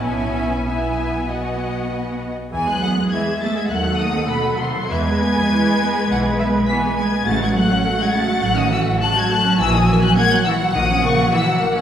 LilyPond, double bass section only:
\new Staff \with { instrumentName = "Double bass section" } { \clef bass \time 4/4 \key e \major \tempo 4 = 103 b,,2.~ b,,8 r8 | e,4 r4 dis,4 r4 | e,4 r4 b,,4 r4 | a,,4 r4 a,,4 r4 |
ais,,4 r4 ais,,4 r4 | }